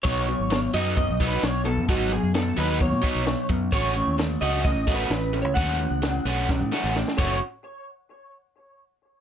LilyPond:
<<
  \new Staff \with { instrumentName = "Clean electric guitar" } { \time 4/4 \key b \mixolydian \tempo 4 = 130 cis''4. dis''8 \tuplet 3/2 { dis''4 b'8 } cis''8 a'8 | fis'8 gis'8 a'8 b'8 cis''4. r8 | cis''4 r8 dis''8 \tuplet 3/2 { dis''4 b'8~ } b'8. cis''16 | fis''2.~ fis''8 cis''8 |
r1 | }
  \new Staff \with { instrumentName = "Overdriven electric guitar" } { \time 4/4 \key b \mixolydian <fis b dis'>8 <fis b>8 <fis b>8 <fis b dis'>8 <fis b>8 <fis b dis'>8 <fis b>8 <fis b>8 | <fis b dis'>8 <fis b>8 <fis b>8 <fis b dis'>8 <fis b>8 <fis b dis'>8 <fis b>8 <fis b>8 | <a cis' fis'>8 <a cis'>8 <a cis'>8 <a cis' fis'>8 <a cis'>8 <a cis' fis'>8 <a cis'>8 <a cis'>8 | <a cis' fis'>8 <a cis'>8 <a cis'>8 <a cis' fis'>8 <a cis'>8 <a cis' fis'>8 <a cis'>8 <a cis' fis'>8 |
r1 | }
  \new Staff \with { instrumentName = "Fingered electric bass" } { \clef bass \time 4/4 \key b \mixolydian b,,8. gis,,8. fis,8. b,,8. b,,8. fis,16 | gis,,8. fis,8. dis,8. b,16 r16 b,,8 r16 fis,8 | a,,8. dis,8. cis,8. a,,8. a,,8. cis,16 | dis,8. cis,8. b,,8. a,16 r16 a,,8 r16 fis,,8 |
r1 | }
  \new DrumStaff \with { instrumentName = "Drums" } \drummode { \time 4/4 <hho bd>4 <hho sn>4 <hho bd>8 bd8 <hho sn>4 | <hho bd>4 <hho sn>4 <hho bd>8 bd8 <hho sn>8 bd8 | <hho bd>4 <hho sn>4 <hho bd>8 bd8 <hho sn>4 | <hho bd>4 <hho sn>4 <bd sn>8 sn8 sn16 sn16 <cymc bd>8 |
r4 r4 r4 r4 | }
>>